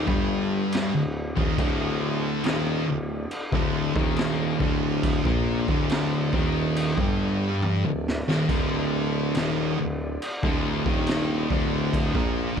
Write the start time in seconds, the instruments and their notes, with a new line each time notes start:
Already playing: synth drone D4 A4 D5
0.07 tuba G1, distorted electric guitar G2 G3, kick
0.72 snare, crash
0.94 tuba D1, distorted electric guitar D2
1.36 tuba D#1, distorted electric guitar D#2 D#3, kick
1.58 tuba D1, distorted electric guitar D2 D3, kick, crash
2.44 tuba D#1, distorted electric guitar D#2 D#3, snare, crash
2.87 tuba D1, distorted electric guitar D2
3.31 crash
3.52 tuba D1, distorted electric guitar D2 D3, kick
3.95 tuba D#1, distorted electric guitar D#2 D#3, kick
4.17 snare, crash
4.59 tuba D1, distorted electric guitar D2 D3, kick
5.03 kick, crash
5.24 tuba A#1, distorted electric guitar A#2 A#3, kick
5.68 tuba D1, distorted electric guitar D2 D3, kick
5.89 snare, crash
6.33 tuba D#1, distorted electric guitar D#2 D#3, kick
6.76 crash
6.98 tuba G1, distorted electric guitar G2 G3, kick
7.62 high tom
7.85 tuba D1, distorted electric guitar D2
8.08 snare
8.28 tuba D#1, distorted electric guitar D#2 D#3, snare
8.48 tuba D1, distorted electric guitar D2 D3, synth drone G4, kick, crash
9.35 tuba D#1, distorted electric guitar D#2 D#3, snare, crash
9.78 tuba D1, distorted electric guitar D2
10.22 crash
10.43 tuba D1, distorted electric guitar D2 D3, kick
10.86 tuba D#1, distorted electric guitar D#2 D#3, kick
11.07 snare, crash
11.50 tuba D1, distorted electric guitar D2 D3, kick
11.93 kick, crash
12.15 tuba A#1, distorted electric guitar A#2 A#3, kick